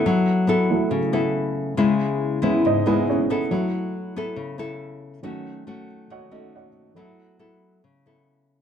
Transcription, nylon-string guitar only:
\new Staff \with { instrumentName = "Nylon-string guitar" } { \time 4/4 \key fis \dorian \tempo 4 = 139 << { <b e' a'>4 <b e' a'>4. <b e' a'>4. | <gis b e'>4. <gis b e'>4 <gis b e'>4 <b e' a'>8~ | <b e' a'>4. <b e' a'>4 <b e' a'>4. | <a cis' fis'>4 <a cis' fis'>4. <a cis' fis'>4. |
<b e' a'>4 <b e' a'>4 r8 <b e' a'>4. | } \\ { fis2 cis2 | cis2 gis,2 | fis2 cis2 | dis2 dis2 |
fis2 cis2 | } >> }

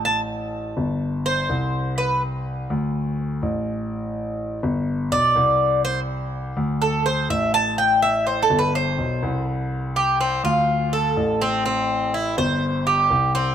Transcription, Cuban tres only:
\new Staff \with { instrumentName = "Cuban tres" } { \time 4/4 \key g \mixolydian \tempo 4 = 124 a''8 r2 c''4. | b'8 r2. r8 | r2 r8 d''4. | c''8 r4. a'8 c''8 e''8 a''8 |
g''8 e''8 \tuplet 3/2 { c''8 a'8 b'8 } c''4. r8 | r8 g'8 c'8 f'4 a'4 c'8 | c'4 e'8 c''4 g'4 c'8 | }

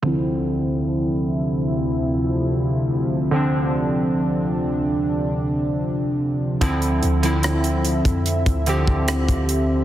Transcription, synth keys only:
\new Staff \with { instrumentName = "Synth keys" } { \clef bass \time 4/4 \key d \minor \tempo 4 = 73 <d f c' e'>1 | <d f c' d'>1 | <d f c' e'>8 r16 <d f c' e'>4~ <d f c' e'>16 r8 <d f c' g'>4 r8 | }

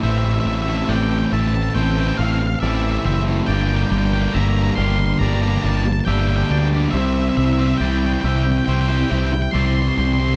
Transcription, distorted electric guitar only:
\new Staff \with { instrumentName = "Distorted electric guitar" } { \time 4/4 \key g \dorian \tempo 4 = 69 <a, e a c' e' a'>8. <a c' e' a'>16 <a, e a c' e' a'>8 <a c' e' a'>8 <a c' e' a'>16 <a c' e' a'>16 <a c' e' a'>8 <a, e a c' e' a'>8. <a c' e' a'>16 | <g, d g bes d' g'>8. <g bes d' g'>16 <g, d g bes d' g'>8 <g bes d' g'>8 <g bes d' g'>16 <g bes d' g'>16 <g bes d' g'>8 <g, d g bes d' g'>8. <g bes d' g'>16 | <c g c' e' g' c''>8. <c' e' g' c''>16 <c g c' e' g' c''>8 <c' e' g' c''>8 <c' e' g' c''>16 <c' e' g' c''>16 <c' e' g' c''>8 <c g c' e' g' c''>8. <c' e' g' c''>16 | }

